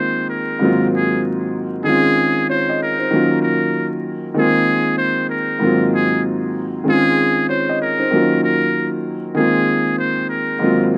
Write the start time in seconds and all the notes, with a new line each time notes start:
Already playing: D#3 G#3 A#3 C4 F4
0.00 C5
0.30 A#4
0.59 G#2 D#3 F#3 A#3 C4
0.64 F4
0.96 G#4
1.84 D#3 G#3 C4 C#4 G#4
1.89 F4
2.50 F4 C5 C#5
2.69 D#5
2.82 A#4
2.99 D#4 C5
3.11 D#3 F#3 A#3 C#4
3.16 F4
3.42 A#4
4.34 D#3 G#3 A#3 C4
4.39 F4 G#4
4.98 C5
5.30 A#4
5.59 G#2 D#3 F#3 A#3 C4
5.64 F4
5.95 G#4
6.84 D#3 G#3 C4 C#4
6.89 F4 G#4
7.49 F4 C5 C#5
7.69 D#5
7.82 A#4
7.99 D#4 C5
8.11 D#3 F#3 A#3 C#4
8.16 F4
8.44 A#4
9.34 D#3 G#3 A#3 C4 G#4
9.39 F4
9.98 C5
10.30 A#4
10.59 G#2 D#3 F#3 A#3 C4
10.64 F4